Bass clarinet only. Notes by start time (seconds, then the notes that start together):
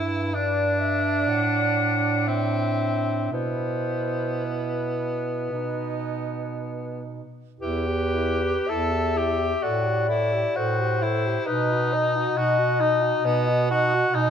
Already playing: G2
1.26 A2
3.31 B2
5.51 B2
7.60 E2
8.69 E2
9.63 A2
10.56 A2
11.48 B2
12.36 B2
13.24 B2
14.13 B2